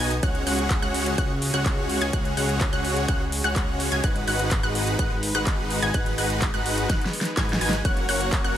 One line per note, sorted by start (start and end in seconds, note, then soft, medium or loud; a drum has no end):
0.00 0.21 B1 loud
0.00 0.12 B3 medium
0.00 0.19 B3 medium
0.00 0.12 D#4 medium
0.00 0.19 D#4 medium
0.00 0.12 F#4 medium
0.00 0.12 D#5 medium
0.00 0.12 G#5 medium
0.00 0.12 G#6 medium
0.11 closed hi-hat soft
0.23 0.44 C#2 loud
0.23 4.00 C#3 medium
0.23 0.43 G#3 medium
0.23 0.43 C#4 medium
0.23 4.00 C#4 medium
0.23 0.43 F#4 medium
0.23 5.90 F#4 medium
0.23 4.00 G#4 loud
0.23 0.43 C#5 medium
0.23 0.43 F#5 loud
0.23 0.43 F#6 loud
0.23 kick loud
0.23 closed hi-hat medium
0.35 closed hi-hat soft
0.47 0.80 C#2 loud
0.47 0.80 G#3 medium
0.47 0.80 C#4 medium
0.47 0.80 F#4 medium
0.47 0.80 C#5 medium
0.47 0.80 F#5 medium
0.47 0.80 F#6 medium
0.47 open hi-hat loud
0.59 closed hi-hat medium
0.70 kick loud
0.70 clap loud
0.70 closed hi-hat medium
0.82 1.16 C#2 medium
0.82 1.15 G#3 medium
0.82 1.15 C#4 medium
0.82 1.15 F#4 medium
0.82 1.15 C#5 medium
0.82 1.15 F#5 loud
0.82 1.15 F#6 loud
0.82 closed hi-hat soft
0.94 open hi-hat medium
1.06 closed hi-hat soft
1.18 1.52 C#2 loud
1.18 1.31 G#3 medium
1.18 1.31 C#4 medium
1.18 1.31 F#4 medium
1.18 1.31 C#5 medium
1.18 1.31 F#5 loud
1.18 1.31 F#6 loud
1.18 kick loud
1.18 closed hi-hat medium
1.42 open hi-hat loud
1.54 1.99 C#2 loud
1.54 1.99 G#3 loud
1.54 1.99 C#4 medium
1.54 1.99 F#4 medium
1.54 1.99 C#5 medium
1.54 1.99 F#5 loud
1.54 1.99 F#6 loud
1.54 closed hi-hat medium
1.66 kick loud
1.66 clap loud
1.66 closed hi-hat medium
1.90 open hi-hat medium
2.01 2.11 C#2 medium
2.01 2.11 G#3 medium
2.01 2.11 C#4 medium
2.01 2.11 F#4 medium
2.01 2.11 C#5 medium
2.01 2.11 G#5 medium
2.01 2.11 G#6 medium
2.01 closed hi-hat medium
2.13 2.35 C#2 loud
2.13 2.34 G#3 medium
2.13 2.34 C#4 medium
2.13 2.34 F#4 medium
2.13 2.34 C#5 medium
2.13 2.34 F#5 loud
2.13 2.34 F#6 loud
2.13 kick loud
2.13 closed hi-hat medium
2.25 closed hi-hat soft
2.37 2.71 C#2 loud
2.37 2.70 G#3 medium
2.37 2.70 C#4 medium
2.37 2.70 F#4 medium
2.37 2.70 C#5 medium
2.37 2.70 F#5 medium
2.37 2.70 F#6 medium
2.37 open hi-hat loud
2.49 closed hi-hat medium
2.61 kick loud
2.61 clap loud
2.61 closed hi-hat medium
2.73 3.06 C#2 medium
2.73 3.06 G#3 medium
2.73 3.06 C#4 medium
2.73 3.06 F#4 medium
2.73 3.06 C#5 medium
2.73 3.06 F#5 loud
2.73 3.06 F#6 loud
2.73 closed hi-hat soft
2.85 open hi-hat medium
2.97 closed hi-hat medium
3.08 3.42 C#2 loud
3.08 3.22 G#3 medium
3.08 3.22 C#4 medium
3.08 3.22 F#4 medium
3.08 3.22 C#5 medium
3.08 3.22 F#5 loud
3.08 3.22 F#6 loud
3.08 kick loud
3.08 closed hi-hat medium
3.32 open hi-hat loud
3.44 3.90 C#2 loud
3.44 3.89 G#3 loud
3.44 3.89 C#4 medium
3.44 3.89 F#4 medium
3.44 3.89 C#5 medium
3.44 3.89 F#5 loud
3.44 3.89 F#6 loud
3.44 closed hi-hat medium
3.56 kick loud
3.56 clap loud
3.56 closed hi-hat medium
3.80 open hi-hat medium
3.92 4.01 C#2 medium
3.92 4.01 G#3 medium
3.92 4.01 C#4 medium
3.92 4.01 F#4 medium
3.92 4.01 C#5 medium
3.92 4.01 G#5 medium
3.92 4.01 G#6 medium
3.92 closed hi-hat medium
4.04 4.25 G#1 medium
4.04 4.24 G#3 medium
4.04 7.81 G#3 medium
4.04 4.24 D#4 medium
4.04 7.81 D#4 medium
4.04 4.24 F#4 medium
4.04 4.24 B4 medium
4.04 7.81 B4 loud
4.04 4.24 F#5 loud
4.04 4.24 F#6 loud
4.04 kick loud
4.04 closed hi-hat medium
4.16 closed hi-hat soft
4.27 4.61 G#1 loud
4.27 4.60 G#3 medium
4.27 4.60 D#4 medium
4.27 4.60 F#4 medium
4.27 4.60 B4 medium
4.27 4.60 F#5 medium
4.27 4.61 F#6 medium
4.27 open hi-hat loud
4.39 closed hi-hat medium
4.51 kick loud
4.51 clap loud
4.51 closed hi-hat medium
4.63 4.97 G#1 loud
4.63 4.96 G#3 loud
4.63 4.96 D#4 medium
4.63 4.96 F#4 medium
4.63 4.96 B4 medium
4.63 4.96 F#5 loud
4.63 4.96 F#6 loud
4.63 closed hi-hat soft
4.75 open hi-hat medium
4.87 closed hi-hat medium
4.99 5.33 G#1 loud
4.99 5.12 G#3 medium
4.99 5.12 D#4 medium
4.99 5.12 F#4 medium
4.99 5.12 B4 medium
4.99 5.12 F#5 loud
4.99 5.12 F#6 loud
4.99 kick loud
4.99 closed hi-hat medium
5.23 open hi-hat loud
5.35 5.80 G#1 loud
5.35 5.80 G#3 medium
5.35 5.80 D#4 medium
5.35 5.80 F#4 medium
5.35 5.80 B4 medium
5.35 5.80 F#5 loud
5.35 5.80 F#6 loud
5.35 closed hi-hat medium
5.47 kick loud
5.47 clap loud
5.47 closed hi-hat medium
5.70 open hi-hat medium
5.82 5.92 G#1 medium
5.82 5.92 G#3 medium
5.82 5.92 D#4 medium
5.82 5.92 F#4 medium
5.82 5.92 B4 medium
5.82 5.92 G#5 medium
5.82 5.92 G#6 medium
5.82 closed hi-hat medium
5.94 6.16 G#1 loud
5.94 6.15 G#3 medium
5.94 6.15 D#4 medium
5.94 6.15 F#4 medium
5.94 6.15 B4 medium
5.94 6.15 F#5 loud
5.94 6.15 F#6 loud
5.94 kick loud
5.94 closed hi-hat medium
6.06 closed hi-hat soft
6.18 6.52 G#1 loud
6.18 6.51 G#3 medium
6.18 6.51 D#4 medium
6.18 6.51 F#4 medium
6.18 6.51 B4 medium
6.18 6.51 F#5 medium
6.18 6.51 F#6 medium
6.18 open hi-hat loud
6.30 closed hi-hat medium
6.42 kick loud
6.42 clap loud
6.42 closed hi-hat medium
6.54 6.87 G#1 medium
6.54 6.87 G#3 medium
6.54 6.87 D#4 medium
6.54 6.87 F#4 medium
6.54 6.87 B4 medium
6.54 6.87 F#5 loud
6.54 6.87 F#6 loud
6.54 closed hi-hat soft
6.66 open hi-hat medium
6.78 closed hi-hat medium
6.90 7.00 G#1 loud
6.90 7.03 G#3 medium
6.90 7.03 D#4 medium
6.90 7.03 F#4 medium
6.90 7.03 B4 medium
6.90 7.03 F#5 loud
6.90 7.03 F#6 loud
6.90 kick loud
6.90 snare medium
6.90 closed hi-hat medium
7.01 closed hi-hat soft
7.06 snare medium
7.13 open hi-hat loud
7.21 snare medium
7.25 closed hi-hat medium
7.37 7.59 G#2 loud
7.37 7.58 G#3 loud
7.37 7.58 D#4 medium
7.37 7.58 F#4 medium
7.37 7.58 B4 medium
7.37 7.58 G#5 loud
7.37 7.58 G#6 loud
7.37 kick loud
7.37 snare medium
7.37 clap loud
7.37 closed hi-hat medium
7.49 snare loud
7.49 closed hi-hat soft
7.61 7.83 G#1 loud
7.61 7.74 G#3 medium
7.61 7.74 D#4 medium
7.61 7.74 F#4 medium
7.61 7.74 B4 medium
7.61 7.74 G#5 medium
7.61 7.74 G#6 medium
7.61 open hi-hat loud
7.69 snare loud
7.69 closed hi-hat medium
7.85 8.06 F#1 loud
7.85 8.05 A#3 medium
7.85 8.57 A#3 medium
7.85 8.05 C#4 medium
7.85 8.57 C#4 medium
7.85 8.05 F#4 medium
7.85 8.57 F#4 loud
7.85 8.05 C#5 medium
7.85 8.05 F#5 loud
7.85 8.05 F#6 loud
7.85 kick loud
7.85 closed hi-hat medium
7.97 closed hi-hat soft
8.09 8.42 F#1 loud
8.09 8.42 A#3 medium
8.09 8.42 C#4 medium
8.09 8.42 F#4 medium
8.09 8.42 C#5 medium
8.09 8.42 F#5 medium
8.09 8.42 F#6 medium
8.09 open hi-hat loud
8.21 closed hi-hat medium
8.32 kick loud
8.32 clap loud
8.32 closed hi-hat medium
8.44 8.57 F#1 medium
8.44 8.57 A#3 medium
8.44 8.57 C#4 medium
8.44 8.57 F#4 medium
8.44 8.57 C#5 medium
8.44 8.57 F#5 loud
8.44 8.57 F#6 loud
8.44 closed hi-hat soft